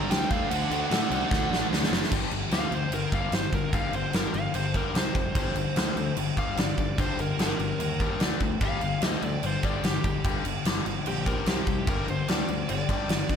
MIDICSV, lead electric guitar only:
0, 0, Header, 1, 2, 480
1, 0, Start_track
1, 0, Key_signature, -2, "minor"
1, 0, Tempo, 403226
1, 605, Time_signature, 4, 2, 24, 8
1, 5406, Tempo, 407056
1, 15805, End_track
2, 0, Start_track
2, 0, Title_t, "Lead electric guitar"
2, 0, Program_c, 0, 29
2, 0, Note_on_c, 0, 82, 102
2, 123, Note_on_c, 0, 79, 106
2, 131, Note_off_c, 0, 82, 0
2, 347, Note_off_c, 0, 79, 0
2, 367, Note_on_c, 0, 77, 94
2, 592, Note_off_c, 0, 77, 0
2, 597, Note_on_c, 0, 78, 90
2, 1990, Note_off_c, 0, 78, 0
2, 3016, Note_on_c, 0, 77, 98
2, 3241, Note_off_c, 0, 77, 0
2, 3263, Note_on_c, 0, 72, 78
2, 3485, Note_off_c, 0, 72, 0
2, 3504, Note_on_c, 0, 70, 94
2, 3726, Note_off_c, 0, 70, 0
2, 3743, Note_on_c, 0, 77, 81
2, 3966, Note_off_c, 0, 77, 0
2, 3984, Note_on_c, 0, 72, 91
2, 4207, Note_off_c, 0, 72, 0
2, 4221, Note_on_c, 0, 70, 80
2, 4446, Note_off_c, 0, 70, 0
2, 4460, Note_on_c, 0, 77, 82
2, 4686, Note_off_c, 0, 77, 0
2, 4707, Note_on_c, 0, 72, 73
2, 4930, Note_off_c, 0, 72, 0
2, 4939, Note_on_c, 0, 70, 78
2, 5166, Note_off_c, 0, 70, 0
2, 5168, Note_on_c, 0, 77, 87
2, 5401, Note_off_c, 0, 77, 0
2, 5415, Note_on_c, 0, 72, 89
2, 5644, Note_off_c, 0, 72, 0
2, 5665, Note_on_c, 0, 70, 82
2, 5888, Note_off_c, 0, 70, 0
2, 5913, Note_on_c, 0, 72, 91
2, 7295, Note_off_c, 0, 72, 0
2, 7579, Note_on_c, 0, 77, 100
2, 7805, Note_off_c, 0, 77, 0
2, 7824, Note_on_c, 0, 74, 96
2, 8282, Note_off_c, 0, 74, 0
2, 8311, Note_on_c, 0, 72, 87
2, 8532, Note_off_c, 0, 72, 0
2, 8550, Note_on_c, 0, 70, 80
2, 8772, Note_off_c, 0, 70, 0
2, 8785, Note_on_c, 0, 70, 89
2, 9711, Note_off_c, 0, 70, 0
2, 10239, Note_on_c, 0, 77, 98
2, 10746, Note_off_c, 0, 77, 0
2, 10746, Note_on_c, 0, 75, 98
2, 10927, Note_off_c, 0, 75, 0
2, 10948, Note_on_c, 0, 74, 83
2, 11175, Note_off_c, 0, 74, 0
2, 11203, Note_on_c, 0, 72, 86
2, 11424, Note_off_c, 0, 72, 0
2, 11428, Note_on_c, 0, 74, 78
2, 11656, Note_off_c, 0, 74, 0
2, 11674, Note_on_c, 0, 67, 100
2, 12133, Note_off_c, 0, 67, 0
2, 13114, Note_on_c, 0, 67, 90
2, 13340, Note_off_c, 0, 67, 0
2, 13348, Note_on_c, 0, 70, 91
2, 13577, Note_off_c, 0, 70, 0
2, 13596, Note_on_c, 0, 67, 93
2, 14053, Note_off_c, 0, 67, 0
2, 14080, Note_on_c, 0, 70, 89
2, 14302, Note_off_c, 0, 70, 0
2, 14316, Note_on_c, 0, 72, 78
2, 14540, Note_off_c, 0, 72, 0
2, 14546, Note_on_c, 0, 74, 93
2, 15005, Note_off_c, 0, 74, 0
2, 15027, Note_on_c, 0, 74, 103
2, 15805, Note_off_c, 0, 74, 0
2, 15805, End_track
0, 0, End_of_file